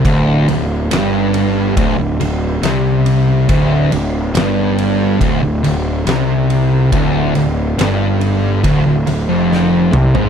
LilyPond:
<<
  \new Staff \with { instrumentName = "Distorted electric guitar" } { \clef bass \time 4/4 \key d \minor \tempo 4 = 70 d,8 d,8 g,4 d,16 d,16 d,8 c4 | d,8 d,8 g,4 d,16 d,16 d,8 c4 | d,8 d,8 g,4 d,16 d,16 d,16 f,8. c16 gis,16 | }
  \new Staff \with { instrumentName = "Picked electric bass" } { \clef bass \time 4/4 \key d \minor d,,8 d,,8 g,,4 d,,16 d,,16 d,,8 c,4 | d,,8 d,,8 g,,4 d,,16 d,,16 d,,8 c,4 | d,,8 d,,8 g,,4 d,,16 d,,16 d,,16 f,,8. c,16 gis,,16 | }
  \new DrumStaff \with { instrumentName = "Drums" } \drummode { \time 4/4 <bd cymr>8 cymr8 <cymr sn>8 cymr8 <bd cymr>8 cymr8 <cymr sn>8 cymr8 | <bd cymr>8 cymr8 <cymr sn>8 cymr8 <bd cymr>8 cymr8 <cymr sn>8 cymr8 | <bd cymr>8 cymr8 <cymr sn>8 cymr8 <bd cymr>8 cymr8 sn8 toml16 tomfh16 | }
>>